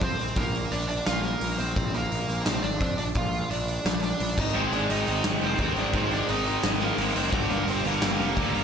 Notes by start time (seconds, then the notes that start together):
0.01 F2 C4 C5, kick, open hi-hat
0.18 A#1, open hi-hat
0.36 A#1 A#3 A#4, kick, open hi-hat
0.54 open hi-hat
0.71 A#1 D4 D5, open hi-hat
0.89 D4 D5, open hi-hat
1.06 A#1 F4 F5, snare, open hi-hat
1.24 A#3 A#4, open hi-hat
1.41 A#1, open hi-hat
1.59 A#1 C4 C5, open hi-hat
1.76 A#1, kick, open hi-hat
1.93 A#1 A#3 A#4, open hi-hat
2.11 A#1, open hi-hat
2.29 A#1, open hi-hat
2.46 A#1 C4 C5, snare, open hi-hat
2.63 G#1 D4 D5, open hi-hat
2.80 F2, kick, open hi-hat
2.98 A#1 D4 D5, open hi-hat
3.15 A#1 F4 F5, kick, open hi-hat
3.33 open hi-hat
3.50 A#1 D4 D5, open hi-hat
3.68 open hi-hat
3.85 A#1, snare, open hi-hat
4.02 D4 D5, open hi-hat
4.20 A#1, open hi-hat
4.38 G#1 D#4 D#5, kick, crash
4.54 G#1 G#2 D#3 G#3 C4 C5
4.73 G#1 D4 D5, open hi-hat
4.90 G#1 D#4 D#5, open hi-hat
5.06 G#1 G#2 D#3 G#3, open hi-hat
5.24 G#1, snare, open hi-hat
5.41 F1 G#2 D#3 G#3 C4 C5, open hi-hat
5.58 D#2 G#2 D#3 G#3, kick, open hi-hat
5.76 G#1 D4 D5, open hi-hat
5.92 G#1 G#2 D#3 G#3 C4 C5, kick, open hi-hat
6.11 D4 D5, open hi-hat
6.28 G#1 D#4 D#5, open hi-hat
6.45 G#2 D#3 G#3, open hi-hat
6.63 G#1, snare, open hi-hat
6.80 G#2 D#3 G#3 A#3 A#4, open hi-hat
6.97 G#1 G#2 D#3 G#3, open hi-hat
7.15 F#1 C4 C5, open hi-hat
7.31 G1 G2 D3, kick, open hi-hat
7.35 G3
7.50 G1 A#3 A#4, open hi-hat
7.67 G1 C4 C5, open hi-hat
7.84 G1 G2 D3 G3 A#3 A#4, open hi-hat
8.02 G1, snare, open hi-hat
8.19 F1 G2 D3 G3, open hi-hat
8.36 D2 G2 D3 G3, kick, open hi-hat
8.54 G1, open hi-hat